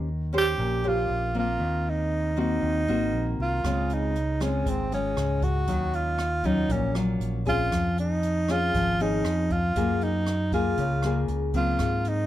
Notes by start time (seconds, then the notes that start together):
Already playing: D#2 D#3
0.33 C#4 G4 C5
0.38 G4
0.58 A#1 A#2
0.84 C#4 G4 C5
0.88 F4
1.09 A#1
1.35 A#3 C4
1.39 F4
1.59 D#2 D#3
1.89 D#4
2.36 A#3 C4 D#4 F#4
2.61 D#2 D#3
2.88 G#1 A#3 C4 F#4
3.13 A#1
3.38 C2 F4
3.64 C#2 C#3 G#3 C4 F4, kick, cross-stick, closed hi-hat
3.90 D#4, closed hi-hat
4.15 closed hi-hat
4.40 G#3 C4 C#4 F4, cross-stick, closed hi-hat
4.66 G#1 G#2 C4, kick, closed hi-hat
4.92 G#3 C#4 F4, closed hi-hat
5.16 C#2, cross-stick, closed hi-hat
5.42 F#4, kick, closed hi-hat
5.67 D#2 D#3 F#3 C#4 F4, kick, closed hi-hat
5.93 F4, closed hi-hat
6.18 cross-stick, closed hi-hat
6.43 F#3 C#4 D#4 F4, kick, closed hi-hat
6.69 A#1 A#2 C#4, kick, closed hi-hat
6.95 F#3 C#4 F4, cross-stick, closed hi-hat
7.20 A#1, closed hi-hat
7.45 C4 C#4 F4 G#4, kick, closed hi-hat
7.72 F2 F3, kick, cross-stick, closed hi-hat
7.98 D#4, closed hi-hat
8.23 closed hi-hat
8.48 C4 C#4 F4 G#4, cross-stick, closed hi-hat
8.74 G#1 F3, kick, closed hi-hat
9.00 C4 C#4 D#4 G#4, closed hi-hat
9.25 F2, cross-stick, closed hi-hat
9.50 F4, kick, closed hi-hat
9.76 F#2 F#3 A#3 F4 G#4, kick, closed hi-hat
10.01 D#4, closed hi-hat
10.26 cross-stick, closed hi-hat
10.52 A#3 F4 G#4, kick, closed hi-hat
10.77 C#2 C#3, kick, closed hi-hat
11.02 A#3 F4 G#4, cross-stick, closed hi-hat
11.28 C#2, closed hi-hat
11.53 F#3 A#3 C4 F4, kick, closed hi-hat
11.79 G#2, kick, cross-stick, closed hi-hat
12.05 D#4, closed hi-hat